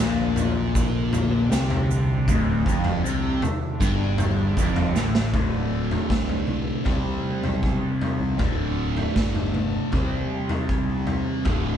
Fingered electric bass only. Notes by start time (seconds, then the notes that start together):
0.00 A#1
1.52 C2
2.28 D1
2.66 F1
3.04 C2
3.81 G1
4.57 F1
4.95 A1
5.34 D1
6.10 C2
6.86 C2
7.44 B1
8.20 C2
8.39 D1
9.16 G1
9.93 C2
10.89 C2
11.46 D1